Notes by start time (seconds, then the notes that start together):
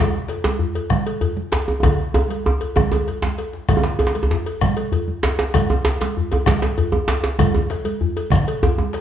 0.13 bombo rim, djembe tone, high conga
0.28 cowbell, djembe slap
0.44 cowbell, djembe slap, high conga
0.59 djembe bass
0.75 cowbell, djembe tone
0.90 bombo rim, bombo low, djembe slap, high conga, low conga
1.06 cowbell
1.21 cowbell, djembe bass
1.36 djembe tone, high conga
1.52 cowbell, djembe slap, high conga
1.68 djembe tone
1.83 bombo rim, bombo low, cowbell, djembe tone, high conga, djembe bass, low conga
1.98 djembe slap, djembe tone
2.14 cowbell, djembe slap, djembe tone
2.28 bombo rim, cowbell, djembe slap, high conga
2.45 bombo rim, djembe slap, high conga, djembe tone
2.60 cowbell, djembe tone, high conga
2.76 bombo rim, bombo low, djembe slap, djembe tone, high conga, low conga
2.92 cowbell, djembe tone
3.07 cowbell, djembe bass
3.22 bombo rim, djembe slap, high conga, djembe bass
3.38 bombo rim, cowbell, djembe slap, high conga
3.53 djembe slap
3.69 bombo rim, bombo low, cowbell, high conga, djembe bass, low conga, shekere
3.77 djembe tone
3.83 bombo rim, djembe slap, high conga, djembe tone, shekere
3.99 cowbell, djembe slap, djembe tone
4.07 djembe slap
4.15 cowbell, high conga
4.23 djembe tone
4.30 djembe slap, djembe bass
4.46 cowbell, djembe tone
4.61 bombo rim, bombo low, djembe slap, high conga, low conga, shekere
4.77 cowbell
4.92 cowbell, djembe bass
5.08 high conga, djembe tone
5.23 cowbell, djembe slap, high conga
5.39 djembe slap
5.54 bombo rim, bombo low, cowbell, high conga, djembe bass, low conga, shekere
5.70 bombo rim, djembe tone, high conga, shekere
5.85 cowbell, djembe slap
6.01 cowbell, djembe slap, high conga
6.17 djembe bass
6.32 cowbell, djembe tone
6.46 bombo rim, bombo low, djembe slap, high conga, low conga, shekere
6.62 cowbell, djembe slap
6.78 cowbell, djembe bass
6.92 djembe tone, high conga
7.08 cowbell, djembe slap, high conga
7.24 djembe slap
7.39 bombo rim, bombo low, cowbell, high conga, low conga, djembe bass, shekere
7.54 bombo rim, high conga, djembe tone, shekere
7.70 cowbell, djembe slap
7.85 cowbell, high conga
8.01 djembe bass
8.16 cowbell, djembe tone
8.30 bombo rim, bombo low, djembe slap, high conga, low conga, shekere
8.48 cowbell
8.63 cowbell, djembe tone, djembe bass
8.78 high conga, djembe tone
8.93 cowbell, djembe slap, high conga